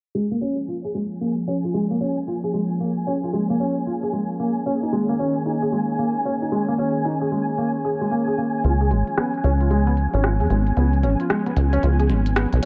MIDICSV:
0, 0, Header, 1, 6, 480
1, 0, Start_track
1, 0, Tempo, 530973
1, 135, Time_signature, 4, 2, 24, 8
1, 11437, End_track
2, 0, Start_track
2, 0, Title_t, "Synth texture"
2, 0, Program_c, 0, 99
2, 135, Note_on_c, 0, 80, 83
2, 11437, Note_off_c, 0, 80, 0
2, 11437, End_track
3, 0, Start_track
3, 0, Title_t, "Felt piano"
3, 0, Program_c, 1, 0
3, 134, Note_on_c, 1, 56, 89
3, 212, Note_off_c, 1, 56, 0
3, 283, Note_on_c, 1, 58, 88
3, 312, Note_off_c, 1, 58, 0
3, 374, Note_on_c, 1, 61, 92
3, 492, Note_off_c, 1, 61, 0
3, 614, Note_on_c, 1, 65, 73
3, 661, Note_off_c, 1, 65, 0
3, 763, Note_on_c, 1, 68, 68
3, 792, Note_off_c, 1, 68, 0
3, 855, Note_on_c, 1, 56, 70
3, 901, Note_off_c, 1, 56, 0
3, 1094, Note_on_c, 1, 58, 74
3, 1172, Note_off_c, 1, 58, 0
3, 1334, Note_on_c, 1, 61, 93
3, 1381, Note_off_c, 1, 61, 0
3, 1484, Note_on_c, 1, 65, 68
3, 1555, Note_off_c, 1, 65, 0
3, 1574, Note_on_c, 1, 56, 90
3, 1653, Note_off_c, 1, 56, 0
3, 1723, Note_on_c, 1, 58, 93
3, 1752, Note_off_c, 1, 58, 0
3, 1815, Note_on_c, 1, 61, 91
3, 1932, Note_off_c, 1, 61, 0
3, 2054, Note_on_c, 1, 65, 74
3, 2101, Note_off_c, 1, 65, 0
3, 2203, Note_on_c, 1, 68, 70
3, 2232, Note_off_c, 1, 68, 0
3, 2294, Note_on_c, 1, 56, 72
3, 2341, Note_off_c, 1, 56, 0
3, 2533, Note_on_c, 1, 58, 75
3, 2612, Note_off_c, 1, 58, 0
3, 2774, Note_on_c, 1, 61, 91
3, 2821, Note_off_c, 1, 61, 0
3, 2923, Note_on_c, 1, 65, 72
3, 2995, Note_off_c, 1, 65, 0
3, 3013, Note_on_c, 1, 56, 90
3, 3092, Note_off_c, 1, 56, 0
3, 3163, Note_on_c, 1, 58, 93
3, 3192, Note_off_c, 1, 58, 0
3, 3253, Note_on_c, 1, 61, 96
3, 3371, Note_off_c, 1, 61, 0
3, 3493, Note_on_c, 1, 65, 74
3, 3541, Note_off_c, 1, 65, 0
3, 3642, Note_on_c, 1, 68, 70
3, 3671, Note_off_c, 1, 68, 0
3, 3733, Note_on_c, 1, 56, 72
3, 3781, Note_off_c, 1, 56, 0
3, 3974, Note_on_c, 1, 58, 78
3, 4052, Note_off_c, 1, 58, 0
3, 4214, Note_on_c, 1, 61, 95
3, 4261, Note_off_c, 1, 61, 0
3, 4363, Note_on_c, 1, 63, 70
3, 4435, Note_off_c, 1, 63, 0
3, 4454, Note_on_c, 1, 56, 95
3, 4532, Note_off_c, 1, 56, 0
3, 4602, Note_on_c, 1, 58, 93
3, 4632, Note_off_c, 1, 58, 0
3, 4693, Note_on_c, 1, 61, 95
3, 4811, Note_off_c, 1, 61, 0
3, 4933, Note_on_c, 1, 63, 74
3, 4981, Note_off_c, 1, 63, 0
3, 5082, Note_on_c, 1, 68, 72
3, 5111, Note_off_c, 1, 68, 0
3, 5173, Note_on_c, 1, 56, 73
3, 5221, Note_off_c, 1, 56, 0
3, 5413, Note_on_c, 1, 58, 75
3, 5492, Note_off_c, 1, 58, 0
3, 5653, Note_on_c, 1, 61, 93
3, 5701, Note_off_c, 1, 61, 0
3, 5802, Note_on_c, 1, 63, 69
3, 5875, Note_off_c, 1, 63, 0
3, 5893, Note_on_c, 1, 56, 93
3, 5972, Note_off_c, 1, 56, 0
3, 6041, Note_on_c, 1, 58, 93
3, 6071, Note_off_c, 1, 58, 0
3, 6132, Note_on_c, 1, 61, 94
3, 6251, Note_off_c, 1, 61, 0
3, 6373, Note_on_c, 1, 63, 77
3, 6421, Note_off_c, 1, 63, 0
3, 6521, Note_on_c, 1, 68, 70
3, 6551, Note_off_c, 1, 68, 0
3, 6613, Note_on_c, 1, 56, 70
3, 6661, Note_off_c, 1, 56, 0
3, 6853, Note_on_c, 1, 58, 75
3, 6932, Note_off_c, 1, 58, 0
3, 7093, Note_on_c, 1, 68, 73
3, 7141, Note_off_c, 1, 68, 0
3, 7242, Note_on_c, 1, 56, 69
3, 7272, Note_off_c, 1, 56, 0
3, 7334, Note_on_c, 1, 58, 76
3, 7412, Note_off_c, 1, 58, 0
3, 7482, Note_on_c, 1, 68, 72
3, 7531, Note_off_c, 1, 68, 0
3, 7573, Note_on_c, 1, 58, 71
3, 7621, Note_off_c, 1, 58, 0
3, 7814, Note_on_c, 1, 65, 77
3, 7861, Note_off_c, 1, 65, 0
3, 7963, Note_on_c, 1, 68, 71
3, 7992, Note_off_c, 1, 68, 0
3, 8054, Note_on_c, 1, 56, 71
3, 8101, Note_off_c, 1, 56, 0
3, 8294, Note_on_c, 1, 59, 76
3, 8372, Note_off_c, 1, 59, 0
3, 8534, Note_on_c, 1, 61, 95
3, 8581, Note_off_c, 1, 61, 0
3, 8683, Note_on_c, 1, 65, 71
3, 8755, Note_off_c, 1, 65, 0
3, 8774, Note_on_c, 1, 56, 94
3, 8853, Note_off_c, 1, 56, 0
3, 8923, Note_on_c, 1, 59, 92
3, 8952, Note_off_c, 1, 59, 0
3, 9163, Note_on_c, 1, 61, 90
3, 9235, Note_off_c, 1, 61, 0
3, 9254, Note_on_c, 1, 65, 74
3, 9301, Note_off_c, 1, 65, 0
3, 9403, Note_on_c, 1, 68, 71
3, 9432, Note_off_c, 1, 68, 0
3, 9494, Note_on_c, 1, 56, 73
3, 9541, Note_off_c, 1, 56, 0
3, 9734, Note_on_c, 1, 59, 75
3, 9813, Note_off_c, 1, 59, 0
3, 9974, Note_on_c, 1, 61, 94
3, 10021, Note_off_c, 1, 61, 0
3, 10123, Note_on_c, 1, 65, 71
3, 10195, Note_off_c, 1, 65, 0
3, 10214, Note_on_c, 1, 56, 94
3, 10292, Note_off_c, 1, 56, 0
3, 10363, Note_on_c, 1, 59, 94
3, 10392, Note_off_c, 1, 59, 0
3, 10603, Note_on_c, 1, 61, 98
3, 10675, Note_off_c, 1, 61, 0
3, 10694, Note_on_c, 1, 65, 78
3, 10741, Note_off_c, 1, 65, 0
3, 10843, Note_on_c, 1, 68, 73
3, 10872, Note_off_c, 1, 68, 0
3, 10934, Note_on_c, 1, 56, 75
3, 10981, Note_off_c, 1, 56, 0
3, 11174, Note_on_c, 1, 59, 77
3, 11252, Note_off_c, 1, 59, 0
3, 11437, End_track
4, 0, Start_track
4, 0, Title_t, "Ambient pad"
4, 0, Program_c, 2, 92
4, 134, Note_on_c, 2, 53, 81
4, 504, Note_on_c, 2, 58, 86
4, 693, Note_on_c, 2, 68, 71
4, 820, Note_on_c, 2, 61, 78
4, 1874, Note_on_c, 2, 73, 83
4, 3974, Note_off_c, 2, 53, 0
4, 3974, Note_on_c, 2, 51, 67
4, 7813, Note_on_c, 2, 53, 73
4, 7814, Note_off_c, 2, 51, 0
4, 7814, Note_off_c, 2, 58, 0
4, 8269, Note_on_c, 2, 59, 75
4, 11437, Note_off_c, 2, 53, 0
4, 11437, Note_off_c, 2, 59, 0
4, 11437, Note_off_c, 2, 61, 0
4, 11437, Note_off_c, 2, 68, 0
4, 11437, Note_off_c, 2, 73, 0
4, 11437, End_track
5, 0, Start_track
5, 0, Title_t, "Acid bass"
5, 0, Program_c, 3, 38
5, 7814, Note_on_c, 3, 37, 98
5, 8054, Note_on_c, 3, 32, 92
5, 8068, Note_off_c, 3, 37, 0
5, 8170, Note_off_c, 3, 32, 0
5, 8534, Note_on_c, 3, 37, 86
5, 9110, Note_off_c, 3, 37, 0
5, 9163, Note_on_c, 3, 32, 97
5, 9403, Note_on_c, 3, 41, 87
5, 9417, Note_off_c, 3, 32, 0
5, 9474, Note_off_c, 3, 41, 0
5, 9494, Note_on_c, 3, 32, 91
5, 9693, Note_off_c, 3, 32, 0
5, 9734, Note_on_c, 3, 37, 95
5, 9974, Note_on_c, 3, 32, 94
5, 9987, Note_off_c, 3, 37, 0
5, 10089, Note_off_c, 3, 32, 0
5, 10454, Note_on_c, 3, 37, 86
5, 10653, Note_off_c, 3, 37, 0
5, 10694, Note_on_c, 3, 37, 103
5, 10934, Note_on_c, 3, 32, 83
5, 10948, Note_off_c, 3, 37, 0
5, 11270, Note_off_c, 3, 32, 0
5, 11323, Note_on_c, 3, 35, 80
5, 11394, Note_off_c, 3, 35, 0
5, 11437, End_track
6, 0, Start_track
6, 0, Title_t, "Drums"
6, 7814, Note_on_c, 9, 42, 47
6, 7904, Note_off_c, 9, 42, 0
6, 7963, Note_on_c, 9, 42, 24
6, 8053, Note_off_c, 9, 42, 0
6, 8054, Note_on_c, 9, 42, 83
6, 8145, Note_off_c, 9, 42, 0
6, 8203, Note_on_c, 9, 42, 46
6, 8293, Note_off_c, 9, 42, 0
6, 8294, Note_on_c, 9, 37, 110
6, 8294, Note_on_c, 9, 42, 48
6, 8385, Note_off_c, 9, 37, 0
6, 8385, Note_off_c, 9, 42, 0
6, 8443, Note_on_c, 9, 42, 24
6, 8533, Note_off_c, 9, 42, 0
6, 8534, Note_on_c, 9, 42, 85
6, 8624, Note_off_c, 9, 42, 0
6, 8683, Note_on_c, 9, 42, 49
6, 8774, Note_off_c, 9, 42, 0
6, 8774, Note_on_c, 9, 42, 47
6, 8865, Note_off_c, 9, 42, 0
6, 8923, Note_on_c, 9, 42, 23
6, 9014, Note_off_c, 9, 42, 0
6, 9014, Note_on_c, 9, 42, 82
6, 9105, Note_off_c, 9, 42, 0
6, 9163, Note_on_c, 9, 42, 47
6, 9254, Note_off_c, 9, 42, 0
6, 9254, Note_on_c, 9, 37, 114
6, 9254, Note_on_c, 9, 42, 48
6, 9345, Note_off_c, 9, 37, 0
6, 9345, Note_off_c, 9, 42, 0
6, 9403, Note_on_c, 9, 42, 23
6, 9414, Note_off_c, 9, 42, 0
6, 9414, Note_on_c, 9, 42, 18
6, 9464, Note_off_c, 9, 42, 0
6, 9464, Note_on_c, 9, 42, 15
6, 9494, Note_off_c, 9, 42, 0
6, 9494, Note_on_c, 9, 42, 86
6, 9574, Note_off_c, 9, 42, 0
6, 9574, Note_on_c, 9, 42, 9
6, 9643, Note_off_c, 9, 42, 0
6, 9643, Note_on_c, 9, 42, 48
6, 9734, Note_off_c, 9, 42, 0
6, 9734, Note_on_c, 9, 42, 46
6, 9825, Note_off_c, 9, 42, 0
6, 9883, Note_on_c, 9, 42, 25
6, 9974, Note_off_c, 9, 42, 0
6, 9974, Note_on_c, 9, 42, 83
6, 10065, Note_off_c, 9, 42, 0
6, 10124, Note_on_c, 9, 42, 47
6, 10214, Note_off_c, 9, 42, 0
6, 10215, Note_on_c, 9, 37, 111
6, 10215, Note_on_c, 9, 42, 48
6, 10305, Note_off_c, 9, 37, 0
6, 10305, Note_off_c, 9, 42, 0
6, 10364, Note_on_c, 9, 42, 24
6, 10454, Note_off_c, 9, 42, 0
6, 10455, Note_on_c, 9, 42, 84
6, 10546, Note_off_c, 9, 42, 0
6, 10604, Note_on_c, 9, 42, 47
6, 10695, Note_off_c, 9, 42, 0
6, 10695, Note_on_c, 9, 42, 47
6, 10786, Note_off_c, 9, 42, 0
6, 10844, Note_on_c, 9, 42, 23
6, 10935, Note_off_c, 9, 42, 0
6, 10935, Note_on_c, 9, 42, 86
6, 11025, Note_off_c, 9, 42, 0
6, 11084, Note_on_c, 9, 42, 46
6, 11174, Note_off_c, 9, 42, 0
6, 11175, Note_on_c, 9, 37, 109
6, 11175, Note_on_c, 9, 42, 47
6, 11266, Note_off_c, 9, 37, 0
6, 11266, Note_off_c, 9, 42, 0
6, 11324, Note_on_c, 9, 42, 23
6, 11414, Note_off_c, 9, 42, 0
6, 11437, End_track
0, 0, End_of_file